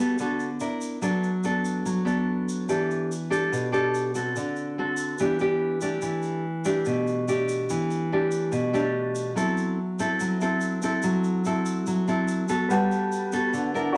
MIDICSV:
0, 0, Header, 1, 4, 480
1, 0, Start_track
1, 0, Key_signature, 1, "minor"
1, 0, Tempo, 417246
1, 1172, Time_signature, 4, 2, 24, 8
1, 16072, End_track
2, 0, Start_track
2, 0, Title_t, "Grand piano"
2, 0, Program_c, 0, 0
2, 14595, Note_on_c, 0, 71, 47
2, 14617, Note_on_c, 0, 78, 46
2, 14642, Note_on_c, 0, 81, 55
2, 14858, Control_c, 0, 64, 127
2, 16014, Note_off_c, 0, 71, 0
2, 16019, Note_on_c, 0, 66, 51
2, 16025, Note_off_c, 0, 78, 0
2, 16026, Note_on_c, 0, 74, 46
2, 16038, Note_off_c, 0, 81, 0
2, 16063, Control_c, 0, 64, 0
2, 16072, Note_off_c, 0, 66, 0
2, 16072, Note_off_c, 0, 74, 0
2, 16072, End_track
3, 0, Start_track
3, 0, Title_t, "Nylon-string guitar"
3, 0, Program_c, 1, 24
3, 0, Note_on_c, 1, 55, 50
3, 0, Note_on_c, 1, 59, 54
3, 0, Note_on_c, 1, 66, 47
3, 0, Note_on_c, 1, 69, 53
3, 176, Note_off_c, 1, 59, 0
3, 179, Note_off_c, 1, 66, 0
3, 182, Note_off_c, 1, 69, 0
3, 186, Note_off_c, 1, 55, 0
3, 222, Note_on_c, 1, 50, 53
3, 228, Note_on_c, 1, 59, 46
3, 236, Note_on_c, 1, 66, 39
3, 242, Note_on_c, 1, 69, 46
3, 530, Note_off_c, 1, 59, 0
3, 532, Note_off_c, 1, 66, 0
3, 536, Note_off_c, 1, 69, 0
3, 673, Note_off_c, 1, 50, 0
3, 697, Note_on_c, 1, 62, 42
3, 700, Note_on_c, 1, 64, 43
3, 702, Note_on_c, 1, 70, 50
3, 1136, Note_off_c, 1, 62, 0
3, 1137, Note_off_c, 1, 64, 0
3, 1137, Note_off_c, 1, 70, 0
3, 1170, Note_on_c, 1, 54, 52
3, 1177, Note_on_c, 1, 59, 45
3, 1181, Note_on_c, 1, 62, 46
3, 1188, Note_on_c, 1, 69, 50
3, 1483, Note_off_c, 1, 59, 0
3, 1484, Note_off_c, 1, 62, 0
3, 1489, Note_off_c, 1, 69, 0
3, 1657, Note_on_c, 1, 59, 49
3, 1664, Note_on_c, 1, 62, 48
3, 1669, Note_on_c, 1, 69, 50
3, 2106, Note_off_c, 1, 54, 0
3, 2134, Note_on_c, 1, 54, 55
3, 2335, Note_off_c, 1, 59, 0
3, 2339, Note_off_c, 1, 62, 0
3, 2340, Note_off_c, 1, 69, 0
3, 2357, Note_on_c, 1, 59, 58
3, 2363, Note_on_c, 1, 62, 53
3, 2371, Note_on_c, 1, 69, 53
3, 3045, Note_off_c, 1, 59, 0
3, 3048, Note_off_c, 1, 62, 0
3, 3052, Note_off_c, 1, 69, 0
3, 3068, Note_off_c, 1, 54, 0
3, 3091, Note_on_c, 1, 52, 54
3, 3093, Note_on_c, 1, 62, 47
3, 3096, Note_on_c, 1, 67, 45
3, 3106, Note_on_c, 1, 69, 45
3, 3567, Note_off_c, 1, 62, 0
3, 3571, Note_off_c, 1, 67, 0
3, 3573, Note_off_c, 1, 69, 0
3, 3799, Note_on_c, 1, 62, 49
3, 3803, Note_on_c, 1, 67, 52
3, 3809, Note_on_c, 1, 69, 55
3, 4028, Note_off_c, 1, 52, 0
3, 4052, Note_on_c, 1, 47, 51
3, 4246, Note_off_c, 1, 62, 0
3, 4249, Note_off_c, 1, 67, 0
3, 4249, Note_off_c, 1, 69, 0
3, 4282, Note_on_c, 1, 62, 52
3, 4285, Note_on_c, 1, 67, 57
3, 4293, Note_on_c, 1, 69, 56
3, 4728, Note_off_c, 1, 62, 0
3, 4728, Note_off_c, 1, 67, 0
3, 4733, Note_off_c, 1, 69, 0
3, 4773, Note_on_c, 1, 60, 45
3, 4775, Note_on_c, 1, 66, 47
3, 4781, Note_on_c, 1, 69, 60
3, 4987, Note_off_c, 1, 47, 0
3, 5022, Note_on_c, 1, 50, 55
3, 5453, Note_off_c, 1, 66, 0
3, 5454, Note_off_c, 1, 60, 0
3, 5457, Note_off_c, 1, 69, 0
3, 5501, Note_on_c, 1, 60, 45
3, 5508, Note_on_c, 1, 66, 47
3, 5515, Note_on_c, 1, 69, 55
3, 5952, Note_off_c, 1, 50, 0
3, 5957, Note_off_c, 1, 60, 0
3, 5961, Note_off_c, 1, 66, 0
3, 5962, Note_off_c, 1, 69, 0
3, 5979, Note_on_c, 1, 52, 53
3, 5983, Note_on_c, 1, 59, 46
3, 5989, Note_on_c, 1, 67, 48
3, 5990, Note_on_c, 1, 62, 38
3, 6177, Note_off_c, 1, 59, 0
3, 6179, Note_off_c, 1, 62, 0
3, 6181, Note_off_c, 1, 67, 0
3, 6214, Note_on_c, 1, 59, 50
3, 6220, Note_on_c, 1, 62, 48
3, 6224, Note_on_c, 1, 67, 58
3, 6654, Note_off_c, 1, 59, 0
3, 6656, Note_off_c, 1, 62, 0
3, 6659, Note_off_c, 1, 67, 0
3, 6691, Note_on_c, 1, 57, 46
3, 6694, Note_on_c, 1, 62, 46
3, 6701, Note_on_c, 1, 67, 54
3, 6913, Note_off_c, 1, 52, 0
3, 6926, Note_on_c, 1, 52, 59
3, 7392, Note_off_c, 1, 57, 0
3, 7394, Note_off_c, 1, 62, 0
3, 7395, Note_off_c, 1, 67, 0
3, 7648, Note_on_c, 1, 57, 55
3, 7653, Note_on_c, 1, 62, 54
3, 7659, Note_on_c, 1, 67, 55
3, 7864, Note_off_c, 1, 52, 0
3, 7892, Note_on_c, 1, 47, 54
3, 8331, Note_off_c, 1, 57, 0
3, 8334, Note_off_c, 1, 62, 0
3, 8335, Note_off_c, 1, 67, 0
3, 8374, Note_on_c, 1, 57, 41
3, 8383, Note_on_c, 1, 62, 47
3, 8383, Note_on_c, 1, 67, 55
3, 8827, Note_off_c, 1, 47, 0
3, 8859, Note_on_c, 1, 52, 60
3, 9295, Note_off_c, 1, 57, 0
3, 9296, Note_off_c, 1, 62, 0
3, 9298, Note_off_c, 1, 67, 0
3, 9345, Note_on_c, 1, 57, 49
3, 9348, Note_on_c, 1, 62, 45
3, 9355, Note_on_c, 1, 67, 53
3, 9791, Note_off_c, 1, 52, 0
3, 9798, Note_on_c, 1, 47, 60
3, 10019, Note_off_c, 1, 57, 0
3, 10022, Note_off_c, 1, 62, 0
3, 10023, Note_off_c, 1, 67, 0
3, 10046, Note_on_c, 1, 57, 57
3, 10051, Note_on_c, 1, 62, 52
3, 10054, Note_on_c, 1, 67, 61
3, 10730, Note_off_c, 1, 57, 0
3, 10732, Note_off_c, 1, 62, 0
3, 10732, Note_off_c, 1, 67, 0
3, 10740, Note_off_c, 1, 47, 0
3, 10761, Note_on_c, 1, 54, 53
3, 10768, Note_on_c, 1, 60, 45
3, 10774, Note_on_c, 1, 64, 48
3, 10776, Note_on_c, 1, 69, 52
3, 11246, Note_off_c, 1, 60, 0
3, 11249, Note_off_c, 1, 64, 0
3, 11250, Note_off_c, 1, 69, 0
3, 11495, Note_on_c, 1, 60, 52
3, 11505, Note_on_c, 1, 64, 52
3, 11505, Note_on_c, 1, 69, 63
3, 11701, Note_off_c, 1, 54, 0
3, 11739, Note_on_c, 1, 54, 57
3, 11934, Note_off_c, 1, 60, 0
3, 11938, Note_off_c, 1, 69, 0
3, 11939, Note_off_c, 1, 64, 0
3, 11979, Note_on_c, 1, 64, 49
3, 11984, Note_on_c, 1, 60, 48
3, 11988, Note_on_c, 1, 69, 62
3, 12416, Note_off_c, 1, 64, 0
3, 12419, Note_off_c, 1, 60, 0
3, 12420, Note_off_c, 1, 69, 0
3, 12455, Note_on_c, 1, 60, 50
3, 12462, Note_on_c, 1, 64, 55
3, 12470, Note_on_c, 1, 69, 58
3, 12671, Note_off_c, 1, 54, 0
3, 12696, Note_on_c, 1, 54, 55
3, 13135, Note_off_c, 1, 60, 0
3, 13136, Note_off_c, 1, 64, 0
3, 13142, Note_off_c, 1, 69, 0
3, 13177, Note_on_c, 1, 60, 43
3, 13186, Note_on_c, 1, 64, 52
3, 13188, Note_on_c, 1, 69, 53
3, 13629, Note_off_c, 1, 54, 0
3, 13656, Note_on_c, 1, 54, 56
3, 13856, Note_off_c, 1, 60, 0
3, 13858, Note_off_c, 1, 64, 0
3, 13861, Note_off_c, 1, 69, 0
3, 13892, Note_on_c, 1, 60, 46
3, 13901, Note_on_c, 1, 69, 58
3, 13903, Note_on_c, 1, 64, 52
3, 14334, Note_off_c, 1, 60, 0
3, 14336, Note_off_c, 1, 69, 0
3, 14338, Note_off_c, 1, 64, 0
3, 14367, Note_on_c, 1, 59, 48
3, 14373, Note_on_c, 1, 69, 56
3, 14374, Note_on_c, 1, 66, 51
3, 14589, Note_off_c, 1, 54, 0
3, 14610, Note_on_c, 1, 55, 56
3, 15290, Note_off_c, 1, 59, 0
3, 15293, Note_off_c, 1, 66, 0
3, 15293, Note_off_c, 1, 69, 0
3, 15326, Note_on_c, 1, 59, 52
3, 15333, Note_on_c, 1, 66, 54
3, 15341, Note_on_c, 1, 69, 60
3, 15546, Note_off_c, 1, 55, 0
3, 15566, Note_on_c, 1, 50, 58
3, 15771, Note_off_c, 1, 59, 0
3, 15772, Note_off_c, 1, 66, 0
3, 15777, Note_off_c, 1, 69, 0
3, 15809, Note_on_c, 1, 62, 52
3, 15814, Note_on_c, 1, 64, 50
3, 15820, Note_on_c, 1, 70, 53
3, 16024, Note_off_c, 1, 50, 0
3, 16072, Note_off_c, 1, 62, 0
3, 16072, Note_off_c, 1, 64, 0
3, 16072, Note_off_c, 1, 70, 0
3, 16072, End_track
4, 0, Start_track
4, 0, Title_t, "Drums"
4, 210, Note_on_c, 9, 82, 52
4, 325, Note_off_c, 9, 82, 0
4, 456, Note_on_c, 9, 82, 22
4, 571, Note_off_c, 9, 82, 0
4, 689, Note_on_c, 9, 82, 47
4, 804, Note_off_c, 9, 82, 0
4, 933, Note_on_c, 9, 82, 56
4, 1048, Note_off_c, 9, 82, 0
4, 1174, Note_on_c, 9, 82, 54
4, 1289, Note_off_c, 9, 82, 0
4, 1419, Note_on_c, 9, 82, 22
4, 1534, Note_off_c, 9, 82, 0
4, 1651, Note_on_c, 9, 82, 45
4, 1766, Note_off_c, 9, 82, 0
4, 1894, Note_on_c, 9, 82, 56
4, 2010, Note_off_c, 9, 82, 0
4, 2136, Note_on_c, 9, 82, 49
4, 2251, Note_off_c, 9, 82, 0
4, 2380, Note_on_c, 9, 82, 20
4, 2495, Note_off_c, 9, 82, 0
4, 2859, Note_on_c, 9, 82, 52
4, 2974, Note_off_c, 9, 82, 0
4, 3093, Note_on_c, 9, 82, 54
4, 3208, Note_off_c, 9, 82, 0
4, 3344, Note_on_c, 9, 82, 22
4, 3459, Note_off_c, 9, 82, 0
4, 3584, Note_on_c, 9, 82, 47
4, 3699, Note_off_c, 9, 82, 0
4, 3822, Note_on_c, 9, 82, 58
4, 3937, Note_off_c, 9, 82, 0
4, 4061, Note_on_c, 9, 82, 54
4, 4176, Note_off_c, 9, 82, 0
4, 4296, Note_on_c, 9, 82, 20
4, 4411, Note_off_c, 9, 82, 0
4, 4537, Note_on_c, 9, 82, 50
4, 4652, Note_off_c, 9, 82, 0
4, 4771, Note_on_c, 9, 82, 52
4, 4886, Note_off_c, 9, 82, 0
4, 5014, Note_on_c, 9, 82, 53
4, 5129, Note_off_c, 9, 82, 0
4, 5246, Note_on_c, 9, 82, 22
4, 5361, Note_off_c, 9, 82, 0
4, 5714, Note_on_c, 9, 82, 57
4, 5829, Note_off_c, 9, 82, 0
4, 5962, Note_on_c, 9, 82, 53
4, 6077, Note_off_c, 9, 82, 0
4, 6199, Note_on_c, 9, 82, 20
4, 6314, Note_off_c, 9, 82, 0
4, 6681, Note_on_c, 9, 82, 58
4, 6796, Note_off_c, 9, 82, 0
4, 6920, Note_on_c, 9, 82, 51
4, 7035, Note_off_c, 9, 82, 0
4, 7159, Note_on_c, 9, 82, 21
4, 7274, Note_off_c, 9, 82, 0
4, 7644, Note_on_c, 9, 82, 62
4, 7759, Note_off_c, 9, 82, 0
4, 7880, Note_on_c, 9, 82, 48
4, 7995, Note_off_c, 9, 82, 0
4, 8133, Note_on_c, 9, 82, 22
4, 8248, Note_off_c, 9, 82, 0
4, 8376, Note_on_c, 9, 82, 48
4, 8491, Note_off_c, 9, 82, 0
4, 8610, Note_on_c, 9, 82, 51
4, 8725, Note_off_c, 9, 82, 0
4, 8850, Note_on_c, 9, 82, 57
4, 8965, Note_off_c, 9, 82, 0
4, 9093, Note_on_c, 9, 82, 21
4, 9208, Note_off_c, 9, 82, 0
4, 9563, Note_on_c, 9, 82, 58
4, 9678, Note_off_c, 9, 82, 0
4, 9803, Note_on_c, 9, 82, 47
4, 9918, Note_off_c, 9, 82, 0
4, 10056, Note_on_c, 9, 82, 22
4, 10171, Note_off_c, 9, 82, 0
4, 10529, Note_on_c, 9, 82, 59
4, 10644, Note_off_c, 9, 82, 0
4, 10781, Note_on_c, 9, 82, 56
4, 10896, Note_off_c, 9, 82, 0
4, 11011, Note_on_c, 9, 82, 21
4, 11126, Note_off_c, 9, 82, 0
4, 11494, Note_on_c, 9, 82, 60
4, 11609, Note_off_c, 9, 82, 0
4, 11732, Note_on_c, 9, 82, 52
4, 11847, Note_off_c, 9, 82, 0
4, 11973, Note_on_c, 9, 82, 23
4, 12088, Note_off_c, 9, 82, 0
4, 12202, Note_on_c, 9, 82, 47
4, 12317, Note_off_c, 9, 82, 0
4, 12447, Note_on_c, 9, 82, 59
4, 12562, Note_off_c, 9, 82, 0
4, 12681, Note_on_c, 9, 82, 52
4, 12796, Note_off_c, 9, 82, 0
4, 12928, Note_on_c, 9, 82, 21
4, 13043, Note_off_c, 9, 82, 0
4, 13168, Note_on_c, 9, 82, 46
4, 13283, Note_off_c, 9, 82, 0
4, 13409, Note_on_c, 9, 82, 58
4, 13524, Note_off_c, 9, 82, 0
4, 13648, Note_on_c, 9, 82, 51
4, 13763, Note_off_c, 9, 82, 0
4, 13893, Note_on_c, 9, 82, 21
4, 14008, Note_off_c, 9, 82, 0
4, 14125, Note_on_c, 9, 82, 50
4, 14240, Note_off_c, 9, 82, 0
4, 14360, Note_on_c, 9, 82, 54
4, 14475, Note_off_c, 9, 82, 0
4, 14614, Note_on_c, 9, 82, 56
4, 14729, Note_off_c, 9, 82, 0
4, 14856, Note_on_c, 9, 82, 23
4, 14971, Note_off_c, 9, 82, 0
4, 15092, Note_on_c, 9, 82, 49
4, 15207, Note_off_c, 9, 82, 0
4, 15324, Note_on_c, 9, 82, 58
4, 15439, Note_off_c, 9, 82, 0
4, 15570, Note_on_c, 9, 82, 49
4, 15685, Note_off_c, 9, 82, 0
4, 15825, Note_on_c, 9, 82, 22
4, 15940, Note_off_c, 9, 82, 0
4, 16072, End_track
0, 0, End_of_file